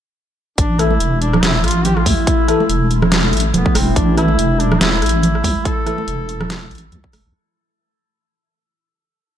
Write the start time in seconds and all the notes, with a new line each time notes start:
0.58 A1 A3 D4 E4, kick, closed hi-hat
0.79 E3 A3 E4 A4, cross-stick, closed hi-hat
0.91 high conga
1.00 E1, closed hi-hat
1.22 D4, closed hi-hat
1.33 cross-stick, low conga
1.43 E1 E4, snare, closed hi-hat
1.55 high conga
1.64 A1 F4, cross-stick, closed hi-hat
1.68 closed hi-hat
1.71 closed hi-hat
1.85 G4, closed hi-hat, low conga
1.97 F4, cross-stick
2.06 D2 E4, kick, open hi-hat, high conga
2.27 kick, closed hi-hat
2.48 E3 A3 A4, cross-stick, closed hi-hat
2.60 high conga
2.69 E1, closed hi-hat
2.91 closed hi-hat
3.02 cross-stick, low conga
3.12 snare, closed hi-hat
3.24 high conga
3.33 A1, closed hi-hat
3.37 closed hi-hat
3.40 closed hi-hat
3.54 E1 B3, closed hi-hat, low conga
3.66 kick
3.75 E1 C4, cross-stick, open hi-hat, high conga
3.96 A1 D4, kick, closed hi-hat
4.17 E3 A3 E4 A4, cross-stick, closed hi-hat
4.28 high conga
4.38 E1, closed hi-hat
4.60 D4, closed hi-hat
4.72 cross-stick, low conga
4.81 E1 E4, snare, closed hi-hat
4.93 high conga
5.02 A1, cross-stick, closed hi-hat
5.06 closed hi-hat
5.09 closed hi-hat
5.23 closed hi-hat, low conga
5.35 cross-stick
5.44 D2, kick, open hi-hat, high conga
5.65 A4, kick, closed hi-hat
5.86 E3 A3 A4, cross-stick, closed hi-hat
5.98 high conga
6.08 E1, closed hi-hat
6.29 closed hi-hat
6.41 cross-stick, low conga
6.50 snare, closed hi-hat
6.62 high conga
6.71 A1, closed hi-hat
6.75 closed hi-hat
6.78 closed hi-hat
6.92 D2, closed hi-hat, low conga
7.04 kick
7.13 E1, cross-stick, open hi-hat, high conga
7.25 C2